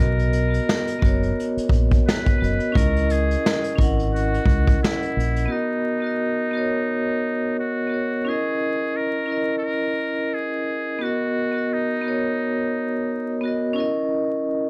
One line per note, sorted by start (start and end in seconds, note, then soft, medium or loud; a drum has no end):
0.00 0.58 B1 loud
0.00 0.40 B3 medium
0.00 0.41 F#4 medium
0.00 0.42 A#4 medium
0.00 1.64 A#4 loud
0.00 0.43 D#5 medium
0.00 closed hi-hat medium
0.19 closed hi-hat soft
0.33 closed hi-hat medium
0.48 0.92 B3 medium
0.48 0.93 F#4 medium
0.53 0.94 A#4 medium
0.53 0.95 D#5 medium
0.53 closed hi-hat soft
0.69 snare loud
0.87 closed hi-hat medium
0.99 1.32 F#1 medium
0.99 2.15 B3 medium
0.99 2.16 F#4 medium
0.99 kick loud
1.04 2.17 A#4 medium
1.04 2.18 C#5 medium
1.04 closed hi-hat medium
1.23 closed hi-hat soft
1.40 closed hi-hat medium
1.57 muted fingered electric bass stroke soft
1.57 closed hi-hat soft
1.69 2.00 A#1 medium
1.69 kick loud
1.69 closed hi-hat medium
1.91 kick medium
1.91 closed hi-hat soft
2.08 2.78 B4 loud
2.08 snare medium
2.26 kick medium
2.26 closed hi-hat soft
2.38 2.58 F#1 medium
2.38 2.68 B3 medium
2.38 2.69 F#4 medium
2.42 2.70 A#4 medium
2.42 2.71 D#5 medium
2.42 closed hi-hat medium
2.60 closed hi-hat soft
2.72 3.35 C#2 loud
2.72 3.60 C#4 loud
2.72 3.61 E4 medium
2.72 kick loud
2.76 3.62 A#4 medium
2.76 3.13 A#4 loud
2.76 3.63 D#5 loud
2.76 closed hi-hat medium
2.96 closed hi-hat soft
3.10 3.79 G#4 medium
3.10 closed hi-hat medium
3.31 closed hi-hat soft
3.46 snare loud
3.64 closed hi-hat medium
3.76 4.38 G#1 medium
3.76 4.91 C#4 medium
3.76 4.92 E4 medium
3.76 kick loud
3.80 4.93 A#4 medium
3.80 4.94 F#5 loud
3.80 closed hi-hat medium
3.99 closed hi-hat soft
4.14 4.78 F#4 loud
4.14 closed hi-hat medium
4.34 closed hi-hat soft
4.46 4.76 C#2 medium
4.46 kick medium
4.46 closed hi-hat medium
4.67 kick medium
4.67 closed hi-hat soft
4.83 5.53 E4 medium
4.83 snare loud
5.02 closed hi-hat soft
5.17 5.46 A#1 medium
5.17 closed hi-hat medium
5.36 closed hi-hat soft
5.46 5.91 B3 medium
5.46 5.92 F#4 medium
5.50 7.58 D#4 medium
5.50 5.93 A#4 medium
5.50 5.95 D#5 loud
6.00 6.44 B3 medium
6.00 6.45 F#4 medium
6.04 6.46 A#4 medium
6.04 6.47 D#5 medium
6.51 7.67 B3 medium
6.51 7.68 F#4 medium
6.55 7.69 A#4 medium
6.55 7.70 C#5 medium
7.59 8.30 F#4 medium
7.87 8.19 B3 medium
7.87 8.20 F#4 medium
7.92 8.21 A#4 medium
7.92 8.22 C#5 medium
8.25 9.12 C#4 medium
8.25 9.13 E4 medium
8.25 8.98 G#4 loud
8.29 9.14 A#4 medium
8.29 9.15 D#5 medium
8.96 9.57 A#4 loud
9.26 10.42 C#4 medium
9.26 10.43 E4 medium
9.30 10.44 A#4 medium
9.30 10.45 D#5 medium
9.58 9.66 A4 medium
9.65 10.36 A#4 loud
10.34 11.04 G#4 loud
10.99 11.44 B3 medium
10.99 11.45 F#4 medium
11.03 11.75 F#4 loud
11.03 11.46 A#4 medium
11.03 11.47 D#5 medium
11.52 11.95 B3 medium
11.52 11.96 F#4 medium
11.56 11.97 A#4 medium
11.56 11.98 D#5 medium
11.73 13.45 D#4 medium
12.01 13.18 B3 medium
12.01 13.19 F#4 medium
12.06 13.20 A#4 medium
12.06 13.21 C#5 medium
13.41 13.71 B3 medium
13.41 13.72 F#4 medium
13.45 13.73 A#4 medium
13.45 13.75 D#5 medium
13.74 14.62 C#4 loud
13.74 14.63 E4 medium
13.78 14.65 A#4 medium
13.78 14.66 D#5 loud